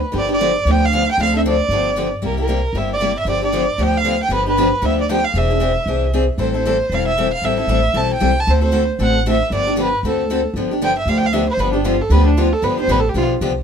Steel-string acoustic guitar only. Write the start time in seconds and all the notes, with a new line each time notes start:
0.12 D3 F3 B3 D4 G4
0.28 B3 D4 G4
0.41 D3 F3 B3 D4 G4
0.67 D3 F3 B3 D4 G4
0.93 D3 F3 B3 D4 G4
1.19 D3 F3 C4 D4 A4
1.33 C4 D4 A4
1.45 D3 F3 C4 D4 A4
1.71 D3 F3 B3 D4 G4
1.96 D3 F3 B3 D4 G4
2.22 C3 G3 A#3 E4 G4
2.37 A#3 E4 G4
2.48 C3 G3 A#3 E4 G4
2.75 C3 G3 A#3 E4 G4
3.00 C3 G3 A#3 E4 G4
3.26 D3 F3 B3 D4 G4
3.41 B3 D4 G4
3.52 D3 F3 B3 D4 G4
3.78 D3 F3 B3 D4 G4
4.04 D3 F3 B3 D4 G4
4.30 D3 F3 B3 D4 G4
4.46 B3 D4 G4
4.57 D3 F3 B3 D4 G4
4.82 D3 F3 B3 D4 G4
5.09 D3 F3 B3 D4 G4
5.35 E3 C4 D4 G#4
5.50 C4 D4 G#4
5.60 E3 C4 D4 G#4
5.87 E3 C4 D4 G#4
6.13 E3 C4 D4 G#4
6.38 E3 G3 C4 E4 A4
6.54 C4 E4 A4
6.65 E3 G3 C4 E4 A4
6.92 E3 G3 C4 E4 A4
7.18 E3 G3 C4 E4 A4
7.43 E3 G3 C4 E4 A4
7.58 C4 E4 A4
7.68 E3 G3 C4 E4 A4
7.94 E3 G3 C4 E4 A4
8.20 E3 G3 C4 E4 A4
8.47 D3 A3 C4 F#4 A4
8.61 C4 F#4 A4
8.72 D3 A3 C4 F#4 A4
8.99 D3 A3 C4 F#4 A4
9.26 D3 A3 C4 F#4 A4
9.52 D3 F3 B3 D4 G4
9.67 B3 D4 G4
9.76 D3 F3 B3 D4 G4
10.05 D3 A3 C4 F#4 A4
10.30 D3 A3 C4 F#4 A4
10.56 D3 F3 B3 D4 G4
10.71 B3 D4 G4
10.82 D3 F3 B3 D4 G4
11.08 D3 F3 B3 D4 G4
11.33 D3 F3 B3 D4 G4
11.59 D3 F3 B3 D4 G4
11.73 B3 D4 G4
11.84 D3 F3 B3 D4 G4
12.10 D3 F3 B3 D4 G4
12.37 D3 F3 B3 D4 G4
12.62 D3 F3 B3 D4 G4
12.78 B3 D4 G4
12.89 D3 F3 B3 D4 G4
13.14 D3 F3 B3 D4 G4
13.41 D3 F3 B3 D4 G4